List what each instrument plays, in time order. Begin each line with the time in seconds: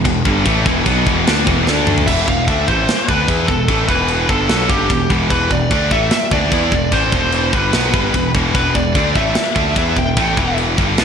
0.05 picked electric bass E1, distorted electric guitar E2 B2, kick, china
0.25 picked electric bass G1, distorted electric guitar G2 D3 G3, kick
0.45 picked electric bass A1, distorted electric guitar A2 E3 A3, kick, china
0.66 picked electric bass E1, distorted electric guitar E2 B2 E3, kick
0.86 picked electric bass B1, distorted electric guitar B2 F#3 B3, kick, china
1.06 picked electric bass E1, distorted electric guitar E2 B2 E3, kick
1.27 picked electric bass D2, distorted electric guitar D3 A3 D4, snare, china
1.47 picked electric bass E1, distorted electric guitar E2 B2 E3, kick
1.67 picked electric bass D2, distorted electric guitar D3 A3 D4, snare
1.87 mid tom
1.98 floor tom
2.07 picked electric bass E1, distorted electric guitar E2 B2 E3, lead electric guitar E5, kick, crash, china
2.28 picked electric bass E1, distorted electric guitar E2 B2, lead electric guitar F5, kick
2.48 picked electric bass D2, distorted electric guitar D3 A3 D4, lead electric guitar E5, kick, china
2.68 picked electric bass A1, distorted electric guitar A2 E3 A3, lead electric guitar C5, kick
2.88 muted picked electric bass stroke, muted distorted electric guitar stroke, snare, china
3.08 picked electric bass D2, distorted electric guitar D3 A3 D4, lead electric guitar B4, kick
3.28 picked electric bass E2, distorted electric guitar E3 B3 E4, kick, china
3.47 picked electric bass E1, distorted electric guitar E2 B2, lead electric guitar A4, kick
3.68 picked electric bass A1, distorted electric guitar A2 E3 A3, kick, china
3.88 picked electric bass E1, distorted electric guitar E2 B2 E3, lead electric guitar B4, kick
4.08 china
4.29 picked electric bass G1, distorted electric guitar G2 D3 G3, lead electric guitar A4, kick
4.49 picked electric bass B1, distorted electric guitar B2 F#3 B3, snare, china
4.69 picked electric bass G1, distorted electric guitar G2 D3 G3, lead electric guitar G4, kick
4.90 picked electric bass E1, distorted electric guitar E2 B2, kick, china
5.10 picked electric bass E1, distorted electric guitar E2 B2 E3, kick
5.30 picked electric bass E1, distorted electric guitar E2 B2 E3, lead electric guitar B4, kick, china
5.51 picked electric bass E1, distorted electric guitar E2 B2, lead electric guitar D5, kick
5.71 picked electric bass D2, distorted electric guitar D3 A3 D4, kick, china
5.91 picked electric bass A1, distorted electric guitar A2 E3 A3, lead electric guitar E5, kick
6.11 lead electric guitar E5, muted distorted electric guitar stroke, muted picked electric bass stroke, snare, china
6.31 picked electric bass D2, distorted electric guitar D3 A3 D4, lead electric guitar D5, kick
6.52 picked electric bass E2, distorted electric guitar E3 B3 E4, kick, china
6.72 picked electric bass E1, distorted electric guitar E2 B2, kick
6.92 picked electric bass A1, distorted electric guitar A2 E3 A3, lead electric guitar C5, kick, china
7.12 picked electric bass E1, distorted electric guitar E2 B2 E3, kick
7.32 china
7.53 picked electric bass G1, distorted electric guitar G2 D3 G3, lead electric guitar B4, kick
7.73 picked electric bass B1, distorted electric guitar B2 F#3 B3, snare, china
7.93 picked electric bass G1, distorted electric guitar G2 D3 G3, kick
8.14 picked electric bass E1, distorted electric guitar E2 B2, kick, china
8.35 picked electric bass E1, distorted electric guitar E2 B2 E3, kick
8.54 picked electric bass E1, distorted electric guitar E2 B2 E3, lead electric guitar B4, kick, china
8.75 picked electric bass E1, distorted electric guitar E2 B2, lead electric guitar D5, kick
8.95 picked electric bass D2, distorted electric guitar D3 A3 D4, kick, china
9.15 picked electric bass A1, distorted electric guitar A2 E3 A3, lead electric guitar E5, kick
9.35 muted distorted electric guitar stroke, muted picked electric bass stroke, snare, china
9.56 picked electric bass D2, distorted electric guitar D3 A3 D4, kick
9.76 picked electric bass E2, distorted electric guitar E3 B3 E4, lead electric guitar E5, kick, china
9.97 picked electric bass E1, distorted electric guitar E2 B2, lead electric guitar G5, kick
10.17 picked electric bass A1, distorted electric guitar A2 E3 A3, kick, china
10.37 picked electric bass E1, distorted electric guitar E2 B2 E3, kick
10.58 china
10.78 picked electric bass G1, distorted electric guitar G2 D3 G3, kick
10.98 picked electric bass B1, distorted electric guitar B2 F#3 B3, snare, china